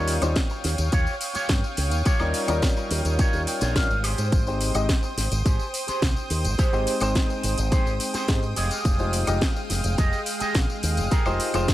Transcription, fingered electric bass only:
0.00 0.18 D#2 loud
0.22 0.34 D#2 medium
0.64 0.76 D#2 medium
0.79 0.90 D#2 loud
0.93 1.05 D#2 medium
1.35 muted fingered electric bass stroke soft
1.49 1.61 G2 medium
1.78 1.92 C#2 medium
1.92 2.04 D#2 loud
2.20 2.32 D#2 medium
2.48 2.60 D#2 medium
2.91 3.03 D#2 medium
3.05 3.17 D#2 medium
3.33 3.45 D#2 medium
3.62 3.85 A#1 loud
3.90 4.13 G#1 medium
4.18 4.30 G#2 medium
4.32 4.71 G#1 medium
4.75 4.87 G#1 medium
5.17 5.29 G#1 medium
5.31 5.43 G#1 loud
5.88 muted fingered electric bass stroke soft
6.02 6.14 C2 medium
6.30 6.46 D#2 medium
6.45 6.56 G#1 loud
6.73 6.85 G#1 medium
7.01 7.13 G#1 medium
7.44 7.56 G#1 medium
7.58 7.70 G#1 loud
7.86 7.98 G#1 medium
8.14 muted fingered electric bass stroke soft
8.29 8.52 G#2 medium
8.57 8.69 F1 medium
8.85 9.24 F1 loud
9.28 9.39 F1 medium
9.70 9.82 F1 medium
9.84 9.96 F1 loud
10.41 muted fingered electric bass stroke soft
10.55 10.67 A#1 medium
10.83 10.99 D#2 loud
10.97 11.09 F1 loud
11.26 11.37 F1 medium
11.54 11.66 F1 medium

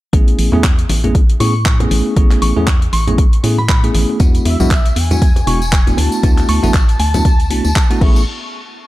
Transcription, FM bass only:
0.13 0.34 A1 medium
0.39 0.50 A1 loud
0.53 0.85 E2 medium
0.90 1.36 A1 medium
1.40 1.87 A2 loud
1.91 2.02 A1 loud
2.17 2.37 A1 loud
2.42 2.53 A1 medium
2.57 2.89 E2 medium
2.93 3.40 A1 medium
3.44 3.91 A2 loud
3.95 4.06 A1 loud
4.20 4.40 E2 loud
4.45 4.57 E2 medium
4.60 4.92 B1 medium
4.96 5.43 E2 medium
5.47 5.94 E1 loud
5.98 6.09 D2 loud
6.23 6.44 D2 loud
6.49 6.60 D2 loud
6.63 6.96 A1 medium
7.00 7.52 D2 medium
7.50 7.62 B1 medium
7.65 7.73 D2 medium
8.01 8.25 A1 loud

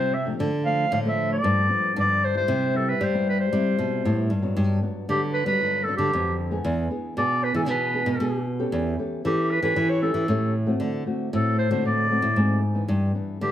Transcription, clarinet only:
0.00 0.15 C5 medium
0.14 0.27 E5 medium
0.66 0.90 F5 loud
0.94 1.00 F5 loud
1.09 1.32 E5 medium
1.32 1.93 D5 medium
2.00 2.26 D5 loud
2.24 2.36 C5 medium
2.37 2.78 C5 medium
2.76 2.91 A4 medium
2.89 3.05 B4 medium
3.04 3.28 C5 medium
3.29 3.39 B4 medium
3.40 4.27 C5 medium
5.10 5.21 G4 medium
5.33 5.45 B4 medium
5.46 5.85 B4 medium
5.84 5.96 A4 medium
5.97 6.35 G4 medium
7.18 7.45 D5 medium
7.44 7.55 B4 medium
7.55 7.61 A4 medium
7.70 8.44 B4 medium
9.26 9.52 G4 medium
9.50 9.62 B4 medium
9.63 9.91 B4 medium
9.89 10.02 C#5 medium
10.02 10.51 A4 medium
11.35 11.58 A4 medium
11.59 11.71 C5 medium
11.72 11.84 C5 medium
11.86 12.60 D5 medium
13.42 13.52 G4 medium

